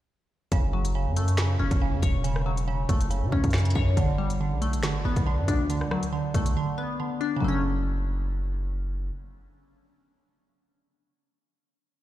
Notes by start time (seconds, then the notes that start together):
0.52 F#1 C#3, kick, closed hi-hat
0.73 F#3
0.85 closed hi-hat
0.95 C#3
1.06 F#2
1.16 A3, closed hi-hat
1.28 closed hi-hat
1.37 C#3, finger snap, snare, closed hi-hat
1.59 F#1 C#4
1.71 F#1, kick, closed hi-hat
1.81 C#3
1.93 F#2
2.02 E1 C#5, kick, closed hi-hat
2.24 C#3, closed hi-hat
2.36 cross-stick
2.46 F#3
2.57 closed hi-hat
2.68 C#3
2.89 F#1 A3, kick, closed hi-hat
3.01 closed hi-hat
3.11 C#3, closed hi-hat
3.22 C#3
3.32 C#2 C#4, kick
3.44 F#2, kick, closed hi-hat
3.50 finger snap, snare, closed hi-hat
3.54 C#3, closed hi-hat
3.58 closed hi-hat
3.60 closed hi-hat
3.65 closed hi-hat
3.70 closed hi-hat
3.75 F#2 C#5, kick
3.97 G1 D3, kick, closed hi-hat
4.18 G3
4.30 closed hi-hat
4.41 D3
4.52 B1
4.62 A3, closed hi-hat
4.73 closed hi-hat
4.78 G1
4.83 D3, finger snap, snare, closed hi-hat
5.05 G1 B3
5.16 B1, kick, closed hi-hat
5.26 D3
5.38 G2
5.48 D2 D4, kick, closed hi-hat
5.70 D3, closed hi-hat
5.81 C#2, cross-stick
5.91 D2 F#3, cross-stick
6.03 closed hi-hat
6.13 D3
6.34 B1 A3, kick, closed hi-hat
6.46 closed hi-hat
6.57 D3
6.78 B3
7.00 D3
7.21 D4
7.36 C#3 F#3
7.42 F#1 A3
7.48 C#4